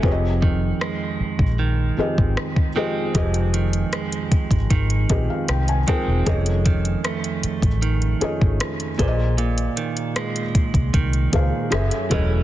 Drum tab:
HH |----------------|xxxxxxxxxxx-xxx-|xxxxxxxxxxx-xxx-|xxxxxxxxxxx-xxx-|
SD |----r-------r---|----r-------r---|----r-------r---|----r-------r---|
BD |o-o----o---o-o--|o-----ooo-o---o-|o-o----o---o--o-|------ooo-o---o-|